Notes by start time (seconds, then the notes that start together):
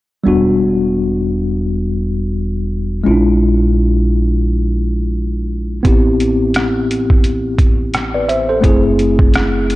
0.24 E1 G3 B3 D4
0.28 F#4
3.04 A#1 G#3 C#4 E4
3.08 D4 F4
5.83 A1 B3 C4 E4, kick, closed hi-hat
5.87 G4
6.20 closed hi-hat
6.54 cross-stick, closed hi-hat
6.91 closed hi-hat
7.10 kick
7.24 closed hi-hat
7.58 kick, closed hi-hat
7.94 cross-stick, closed hi-hat
8.14 B4 D5
8.29 C5 E5, closed hi-hat
8.49 A4 C5
8.61 F#1 A3 C4 E4, kick, closed hi-hat
8.65 G#4
8.99 closed hi-hat
9.19 kick
9.34 cross-stick, closed hi-hat
9.70 closed hi-hat